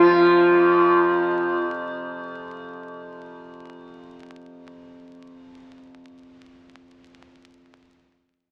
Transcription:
Already playing: F2 C3 F3 F4
0.48 F2

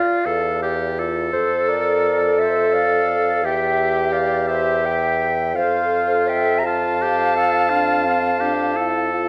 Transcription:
Already playing: F4 D5 F5
0.25 E2 A4
0.62 G4
0.98 F4 A4
1.32 F2 A4 C5
1.68 A#4 D5
2.38 A4 C5 E5
2.73 D5 F5
3.42 E2 G4 E5 G5
4.12 D5 F5
4.48 G4 C5 E5
4.85 E5 G5
5.54 F2 F4 A4 C5 F5
6.27 E5 G5
6.59 A#5
6.64 F4 F5 A5
7.02 G4
7.37 F4 A4
7.70 D4 F4
8.06 C4 F4
8.41 D4 G4
8.76 E4 A4
9.12 F4

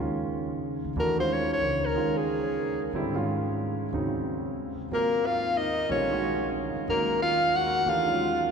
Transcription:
Already playing: D#2 D#3
0.00 G#3 C#4 F4
0.84 D2
0.96 D#2 E3 A3 D4 F#4
1.00 A#4
1.18 D#3 G#3 C#4 F4 C5
1.32 C#5
1.53 C#5
1.61 C#2
1.86 A#4
1.94 D#2 D#3 G#3 C#4 F4
2.17 G#4
2.93 G#2 D3 G3 C4 E4
3.14 D#3 G#3 C#4 F4
3.93 D#2 C#3 F#3 C4 D#4
4.91 D#2 F#3 A#3 C4 F4 A#4
5.26 F4 F5
5.57 D#4 D#5
5.89 A#1 D3 G3 C4 C#4 F4 C#5
6.11 D#3 G#3 C#4 F#4
6.76 muted upright bass stroke
6.88 D#2 D#3 F#3 G#3 A#3 C#4 A#4
7.22 F4 F5
7.55 F#4 F#5
7.86 D#2 E3 A3 D4 F4 G4 F5
8.06 D#3 F#3 G#3 C#4

